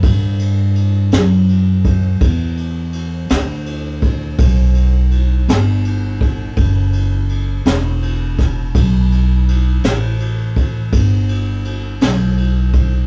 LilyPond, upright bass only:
\new Staff \with { instrumentName = "Upright bass" } { \clef bass \time 12/8 \key e \minor \tempo 4. = 55 g,4. fis,4. e,4. d,4. | b,,4. g,,4. fis,,4. e,,4. | b,,4. a,,4. g,,4. b,,4. | }